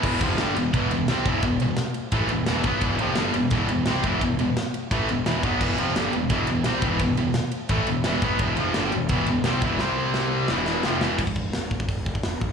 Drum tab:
CC |x---------------|----------------|----------------|----------------|
RD |--x-x-x-x-x-x-x-|x-x-x-x-x-x-x-x-|x-x-x-x-x-x-x-x-|x-x-x-x-x-x-x-x-|
HH |----------------|----------------|----------------|----------------|
SD |----o-------o---|----o-------o---|----o-------o---|----o-------o---|
BD |o-o-----o-----o-|o-------o-----o-|o-------o-----o-|o-------o-----o-|

CC |x---------------|----------------|----------------|----------------|
RD |--x-x-x-x-x-x-x-|x-x-x-x-x-x-x-x-|x-x-x-x-x-x-x-x-|----------------|
HH |----------------|----------------|----------------|----------------|
SD |----o-------o---|----o-------o---|----o-------o---|o---o---o-o-o-o-|
BD |o-------o-----o-|o-------o-----o-|o-------o-----o-|----------------|

CC |x---------------|
RD |----------------|
HH |----o---o---o---|
SD |----o-------o---|
BD |ooo---ooo-oo--o-|